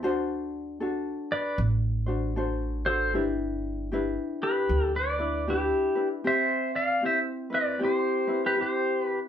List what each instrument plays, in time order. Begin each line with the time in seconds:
0.03 upright bass D2, ukulele D4 F#4 A4 C5
0.80 ukulele D4 F#4 A4
1.32 pedal steel guitar B4 D5
1.58 upright bass A1
2.06 ukulele D4 F#4 C5
2.36 ukulele D4 F#4 A4 C5
2.85 ukulele D4 F#4 C5, pedal steel guitar A4 C5
3.14 upright bass G1, ukulele D4 E4 G4 B4
3.92 ukulele D4 E4 G4 B4
4.43 pedal steel guitar G4 B4
4.69 upright bass D2
4.96 pedal steel guitar B4 D5
5.19 ukulele D4 E4 B4
5.48 ukulele D4 E4 G4 B4, pedal steel guitar E4 G4
5.95 ukulele D4 E4 B4
6.24 ukulele C4 G4, pedal steel guitar C5 E5
6.75 pedal steel guitar D5 F5
7.02 ukulele C4 E4 G4, pedal steel guitar C5 E5
7.50 ukulele C4 E4 B4
7.54 pedal steel guitar B4 D5
7.79 ukulele C4 E4 G4
7.83 pedal steel guitar G4 C5
8.27 ukulele C4 E4 B4
8.46 pedal steel guitar G4 B4
8.56 ukulele C4 E4 G4
8.61 pedal steel guitar G4 C5
9.03 pedal steel guitar B4